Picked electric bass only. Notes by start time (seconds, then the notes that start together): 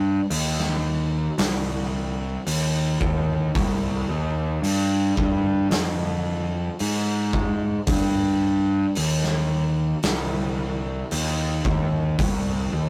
Already playing: G2
0.30 D#2
1.38 C2
2.47 D#2
3.00 D#2
3.55 C2
4.09 D#2
4.62 G2
5.17 G2
5.70 F2
6.80 G#2
7.87 G2
8.97 D#2
10.05 C2
11.12 D#2
11.65 D#2
12.19 C2
12.73 D#2